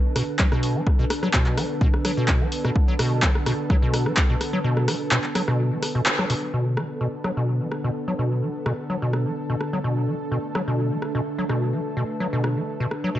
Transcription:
0.00 6.49 D3 medium
0.00 6.50 B3 medium
0.00 6.52 D4 medium
0.00 6.50 A4 medium
0.00 6.53 B4 medium
0.00 6.53 A5 medium
0.16 0.23 B2 loud
0.16 cross-stick medium
0.16 open hi-hat loud
0.39 0.46 F#3 loud
0.39 kick loud
0.39 clap loud
0.52 0.77 B2 loud
0.52 cross-stick medium
0.63 open hi-hat loud
0.76 0.82 F#3 loud
0.87 kick loud
0.87 cross-stick medium
0.99 1.05 B2 loud
1.10 cross-stick medium
1.10 open hi-hat loud
1.23 1.29 F#3 loud
1.23 cross-stick medium
1.33 1.59 B2 loud
1.33 kick medium
1.33 clap loud
1.46 clap soft
1.58 1.64 F#3 loud
1.58 cross-stick medium
1.58 open hi-hat loud
1.81 1.88 B2 loud
1.81 kick loud
1.94 cross-stick medium
2.05 2.12 F#3 loud
2.05 cross-stick medium
2.05 open hi-hat loud
2.17 2.42 B2 loud
2.28 kick loud
2.28 cross-stick medium
2.28 clap loud
2.41 2.47 F#3 loud
2.52 open hi-hat loud
2.65 2.71 B2 loud
2.65 cross-stick medium
2.76 kick loud
2.88 2.94 F#3 loud
2.99 3.24 B2 loud
2.99 cross-stick medium
2.99 open hi-hat loud
3.22 3.30 F#3 loud
3.22 kick loud
3.22 clap loud
3.35 cross-stick medium
3.46 3.53 B2 loud
3.46 cross-stick medium
3.46 open hi-hat loud
3.70 3.77 F#3 loud
3.70 kick loud
3.70 cross-stick medium
3.82 4.07 B2 loud
3.94 cross-stick medium
3.94 open hi-hat loud
4.06 4.12 F#3 loud
4.06 cross-stick medium
4.17 kick loud
4.17 clap loud
4.30 4.36 B2 loud
4.41 cross-stick medium
4.41 open hi-hat loud
4.53 4.59 F#3 loud
4.64 4.90 B2 loud
4.77 cross-stick medium
4.88 4.95 F#3 loud
4.88 cross-stick medium
4.88 open hi-hat loud
5.11 5.19 B2 loud
5.11 cross-stick medium
5.11 clap loud
5.24 clap soft
5.35 5.42 F#3 loud
5.35 cross-stick medium
5.35 open hi-hat loud
5.48 5.73 B2 loud
5.48 cross-stick medium
5.71 5.78 F#3 loud
5.83 cross-stick medium
5.83 open hi-hat loud
5.95 6.01 B2 loud
6.06 clap loud
6.19 6.25 F#3 loud
6.19 cross-stick medium
6.30 6.34 B2 loud
6.30 open hi-hat loud
6.53 6.79 B2 loud
6.53 13.19 D3 medium
6.53 10.28 B3 medium
6.53 13.19 D4 medium
6.53 13.19 A4 medium
6.67 13.19 A5 medium
6.77 6.84 F#3 medium
6.77 13.19 B4 medium
6.77 cross-stick medium
7.01 7.08 B2 medium
7.24 7.31 F#3 loud
7.24 cross-stick medium
7.37 7.62 B2 loud
7.61 7.67 F#3 loud
7.72 cross-stick medium
7.84 7.90 B2 loud
8.08 8.14 F#3 loud
8.19 8.44 B2 loud
8.42 8.49 F#3 loud
8.66 8.73 B2 loud
8.66 cross-stick medium
8.90 8.97 F#3 medium
9.02 9.27 B2 loud
9.13 cross-stick medium
9.26 9.32 F#3 medium
9.50 9.56 B2 medium
9.61 cross-stick medium
9.73 9.79 F#3 medium
9.84 10.09 B2 medium
10.08 10.15 F#3 loud
10.31 10.38 B2 loud
10.31 13.19 A3 medium
10.55 10.62 F#3 loud
10.55 cross-stick medium
10.68 10.93 B2 loud
10.91 10.97 F#3 medium
11.02 cross-stick medium
11.15 11.21 B2 medium
11.39 11.45 F#3 loud
11.49 11.75 B2 loud
11.49 cross-stick medium
11.73 11.80 F#3 loud
11.97 12.04 B2 loud
12.20 12.27 F#3 loud
12.33 12.58 B2 loud
12.44 cross-stick medium
12.57 12.63 F#3 loud
12.80 12.86 B2 medium
12.91 cross-stick medium
13.04 13.10 F#3 loud
13.15 13.19 B2 loud

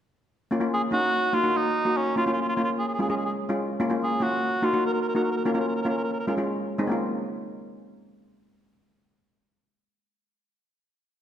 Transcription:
0.51 0.57 A#3 medium
0.51 0.58 C#4 medium
0.51 0.58 F4 medium
0.60 0.79 A#3 medium
0.60 0.80 C#4 medium
0.60 0.80 F4 medium
0.74 0.83 G#4 medium
0.91 1.12 A#3 medium
0.91 1.13 C#4 medium
0.91 1.13 D#4 medium
0.91 1.36 F#4 loud
1.33 1.40 A#3 medium
1.33 1.40 D#4 medium
1.33 1.58 F4 medium
1.33 1.40 F#4 medium
1.43 1.68 A#3 medium
1.43 1.69 D#4 medium
1.43 1.69 F#4 medium
1.56 1.98 D#4 medium
1.85 1.95 A#3 medium
1.85 1.96 D#4 medium
1.85 1.96 F#4 medium
1.97 2.17 C#4 medium
2.16 2.22 A#3 medium
2.16 2.23 C#4 medium
2.16 2.24 F4 medium
2.16 2.23 F4 medium
2.26 2.45 A#3 medium
2.26 2.45 C#4 medium
2.26 2.32 F4 medium
2.26 2.46 F4 medium
2.33 2.39 F4 medium
2.41 2.47 F4 medium
2.49 2.55 F4 medium
2.56 2.78 A#3 medium
2.56 2.78 C#4 medium
2.56 2.62 F4 medium
2.56 2.79 F4 medium
2.64 2.70 F4 medium
2.79 2.86 G#4 medium
2.88 2.93 G#4 soft
2.94 3.01 G#4 medium
2.99 3.05 G#3 medium
2.99 3.05 C#4 medium
2.99 3.05 F4 medium
2.99 3.08 G#4 medium
3.08 3.33 G#3 medium
3.08 3.34 C#4 medium
3.08 3.16 G#4 medium
3.08 3.34 G#4 medium
3.17 3.23 G#4 soft
3.25 3.31 G#4 medium
3.49 3.60 G#3 medium
3.49 3.60 C#4 medium
3.49 3.60 F4 medium
3.80 3.87 A#3 medium
3.80 3.87 C#4 medium
3.80 3.87 F4 medium
3.90 4.09 A#3 medium
3.90 4.09 C#4 medium
3.90 4.10 F4 medium
4.03 4.24 G#4 medium
4.20 4.42 A#3 medium
4.20 4.42 C#4 medium
4.20 4.43 F4 medium
4.20 4.66 F#4 medium
4.62 4.69 A#3 medium
4.62 4.69 D#4 medium
4.62 4.84 F4 medium
4.62 4.70 F#4 medium
4.73 4.98 A#3 medium
4.73 4.98 D#4 medium
4.73 4.98 F#4 medium
4.86 4.92 A#4 medium
4.94 5.00 A#4 medium
5.02 5.07 A#4 medium
5.08 5.15 A#4 medium
5.15 5.25 A#3 medium
5.15 5.25 D#4 medium
5.15 5.26 F#4 medium
5.15 5.22 A#4 medium
5.23 5.29 A#4 soft
5.31 5.36 A#4 medium
5.37 5.44 A#4 medium
5.45 5.52 A#3 medium
5.45 5.52 C#4 medium
5.45 5.52 F4 medium
5.45 5.52 A#4 medium
5.53 5.74 A#3 medium
5.53 5.74 C#4 medium
5.53 5.74 F4 medium
5.53 5.59 A#4 soft
5.60 5.67 A#4 medium
5.68 5.74 A#4 soft
5.75 5.82 A#4 medium
5.82 6.07 A#3 medium
5.82 6.07 C#4 medium
5.82 6.07 F4 medium
5.82 5.88 A#4 medium
5.89 5.96 A#4 medium
5.97 6.03 A#4 medium
6.04 6.11 A#4 medium
6.13 6.19 A#4 soft
6.20 6.26 A#4 medium
6.27 6.34 G#3 medium
6.27 6.34 C#4 medium
6.27 6.34 F4 medium
6.27 6.34 A#4 medium
6.37 6.48 G#3 medium
6.37 6.48 C#4 medium
6.37 6.49 F4 medium
6.78 6.89 G#3 medium
6.78 6.90 C4 medium
6.78 6.90 D#4 medium
6.87 10.43 A#3 medium
6.87 10.45 C#4 medium
6.92 10.48 F4 medium

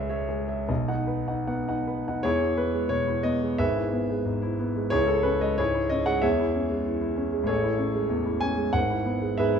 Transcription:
0.00 0.64 C#2 medium
0.00 0.29 G#3 medium
0.00 0.29 G#4 soft
0.00 0.09 C#5 medium
0.00 0.10 E5 medium
0.09 0.27 C#5 medium
0.09 0.27 E5 soft
0.29 0.60 G#3 medium
0.29 0.60 G#4 soft
0.48 0.66 C#5 soft
0.48 0.67 E5 soft
0.68 2.20 B1 medium
0.68 0.87 D#5 soft
0.88 1.20 D#4 soft
0.88 1.06 D#5 soft
0.88 1.06 F#5 soft
1.07 1.39 B4 soft
1.28 1.59 D#4 soft
1.28 1.45 D#5 soft
1.28 1.45 F#5 soft
1.47 1.79 B3 soft
1.47 1.67 F#5 soft
1.68 1.99 D#4 soft
1.68 1.85 D#5 soft
1.68 1.86 F#5 soft
1.87 2.17 B4 soft
2.08 2.25 D#4 soft
2.08 2.23 D#5 soft
2.08 2.23 F#5 soft
2.23 3.55 E2 medium
2.23 2.40 E4 medium
2.23 2.56 G#4 medium
2.23 2.57 C#5 medium
2.42 2.68 E4 medium
2.57 2.85 B3 soft
2.57 2.91 B4 medium
2.74 3.01 G#3 soft
2.89 3.18 B2 soft
2.89 3.24 C#5 medium
3.07 3.35 E4 soft
3.23 3.52 B3 soft
3.23 3.58 D#5 medium
3.42 3.59 G#3 soft
3.58 4.88 G#1 medium
3.58 4.55 G#4 medium
3.58 4.55 B4 medium
3.58 4.59 E5 medium
3.76 4.02 E4 soft
3.93 4.19 B3 soft
4.10 4.36 G#3 soft
4.25 4.52 G#2 soft
4.42 4.69 E4 medium
4.59 4.86 B3 soft
4.76 4.92 G#3 soft
4.90 6.20 C#2 medium
4.90 5.06 E4 medium
4.90 5.07 G#4 medium
4.90 5.08 C#5 loud
5.07 5.35 E4 soft
5.07 5.25 A4 medium
5.23 5.52 C#4 soft
5.23 5.41 B4 medium
5.41 5.68 G#3 soft
5.41 5.58 D#5 medium
5.58 5.85 G#2 soft
5.58 5.72 E4 medium
5.58 5.90 G#4 medium
5.58 5.91 C#5 medium
5.74 6.01 E4 medium
5.90 6.17 C#4 soft
5.90 6.07 D#5 medium
6.06 6.23 G#3 soft
6.06 6.23 F#5 medium
6.22 7.45 E2 medium
6.22 7.14 G#4 medium
6.22 7.14 C#5 medium
6.22 7.18 E5 medium
6.40 6.65 E4 medium
6.56 6.81 C#4 soft
6.70 6.96 G#3 soft
6.86 7.12 E3 soft
7.01 7.27 E4 soft
7.17 7.43 C#4 soft
7.32 7.49 G#3 soft
7.43 8.69 A1 medium
7.43 8.42 C#5 medium
7.48 8.39 G#4 medium
7.48 8.39 A4 medium
7.63 7.89 E4 soft
7.78 8.04 C#4 soft
7.95 8.21 G#3 soft
8.09 8.36 E2 medium
8.25 8.52 E4 medium
8.41 8.69 C#4 soft
8.41 8.75 G#5 medium
8.57 8.75 G#3 soft
8.73 9.60 G#1 medium
8.73 9.39 F#5 medium
8.90 9.17 E4 soft
9.05 9.33 B3 soft
9.22 9.49 G#3 soft
9.38 9.60 G#2 soft
9.38 9.60 G#4 medium
9.38 9.60 B4 medium
9.38 9.60 E5 medium
9.54 9.60 E4 soft

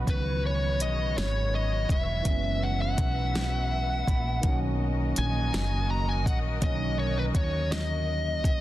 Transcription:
0.00 4.39 F#4 medium
0.00 2.21 B4 medium
0.04 0.81 C#2 loud
0.04 2.23 C#3 medium
0.04 2.20 E3 medium
0.04 2.21 F#3 soft
0.04 2.23 C#4 medium
0.04 2.23 C#5 medium
0.04 kick loud
0.04 closed hi-hat medium
0.09 2.23 D#3 medium
0.09 2.22 B3 medium
0.09 0.42 B4 medium
0.46 0.82 C#5 medium
0.80 1.19 B1 medium
0.80 1.18 D#5 medium
0.80 closed hi-hat medium
1.18 1.86 G#1 medium
1.18 1.55 C#5 medium
1.18 snare loud
1.18 closed hi-hat medium
1.55 1.88 D#5 medium
1.89 2.22 E1 medium
1.89 2.65 E5 medium
1.89 kick medium
1.89 closed hi-hat medium
2.22 2.94 F#1 medium
2.22 4.38 E3 medium
2.22 4.41 F#3 medium
2.22 4.39 G#3 medium
2.22 4.42 B4 medium
2.22 4.42 E5 medium
2.22 kick loud
2.22 closed hi-hat medium
2.27 4.40 B3 soft
2.27 4.41 C#4 medium
2.63 2.80 F#5 medium
2.82 4.59 F#5 medium
2.98 4.03 B1 medium
2.98 kick medium
2.98 closed hi-hat medium
3.35 snare loud
3.35 closed hi-hat medium
3.71 3.88 E5 medium
3.90 4.06 F#5 medium
4.07 4.40 A#1 medium
4.07 4.41 B5 medium
4.07 kick medium
4.07 closed hi-hat medium
4.41 5.12 B1 medium
4.41 6.56 D#3 medium
4.41 6.58 F#3 medium
4.41 8.61 A#3 medium
4.41 8.61 F#4 medium
4.41 8.61 A#4 medium
4.41 8.61 D#5 medium
4.41 kick loud
4.41 closed hi-hat medium
4.46 6.59 A#3 medium
4.46 6.60 C#4 medium
5.16 5.50 A#1 medium
5.16 5.92 G#5 loud
5.16 closed hi-hat medium
5.54 6.27 F#1 medium
5.54 snare loud
5.54 closed hi-hat medium
5.91 6.07 A#5 loud
6.09 6.27 G#5 medium
6.26 6.59 A#1 medium
6.26 6.37 F#5 loud
6.26 kick medium
6.26 closed hi-hat medium
6.59 7.31 B1 loud
6.59 6.67 D3 soft
6.59 8.61 F#3 medium
6.59 kick loud
6.59 closed hi-hat medium
6.64 8.61 D#3 medium
6.64 8.61 A#3 medium
6.64 8.61 C#4 medium
6.64 6.99 D#5 loud
6.99 7.17 C#5 medium
7.18 7.23 B4 medium
7.35 8.45 D#2 medium
7.35 7.72 C#5 medium
7.35 kick loud
7.35 closed hi-hat medium
7.72 8.61 D#5 medium
7.72 snare loud
7.72 closed hi-hat medium
8.44 8.61 A#1 medium
8.44 kick medium
8.44 closed hi-hat medium

